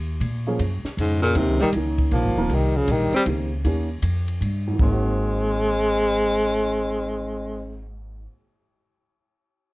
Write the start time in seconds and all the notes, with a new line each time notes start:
Already playing: D#2
0.20 A#2, kick, ride
0.47 F3 A#3 C#4 G#4
0.59 F#2, kick, hi-hat pedal, ride
0.84 muted upright bass stroke, snare
0.97 F2 G#2 C#3, kick, ride
1.22 A#2 C#3, snare
1.35 D#2 C3 D#3 A#3 C#4 G4, kick, ride
1.48 C#2
1.59 A#1 D#3 G3, snare
1.73 C#2 D#3 A#3 C#4 D#4, kick, hi-hat pedal, ride
1.98 kick, ride
2.11 A#1 F3 A#3, kick, ride
2.24 G1
2.36 D#1 D#3 A#3 C4 A#4
2.49 C2 G3, kick, ride
2.55 D#3
2.76 C#3 F3
2.88 A#1 D#3 G3, kick, hi-hat pedal, ride
3.12 G3 C4, muted upright bass stroke, ride
3.26 C#2 D#3 A#3 C4 G4, kick, ride
3.64 D#2 D#3 A#3 C#4 G4, kick, ride
4.02 F2, kick, hi-hat pedal, ride
4.28 ride
4.41 G2, kick, ride
4.67 G#2
4.73 D#3
4.79 G#1 G#3 A#3 C4, kick
4.85 C4
4.92 F#4